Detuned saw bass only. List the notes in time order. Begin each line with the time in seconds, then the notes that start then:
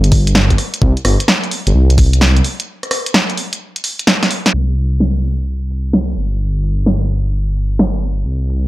Already playing: G1
0.82 C2
1.05 G1
1.67 G1
1.75 C2
4.54 C2
6.17 G1
8.26 C2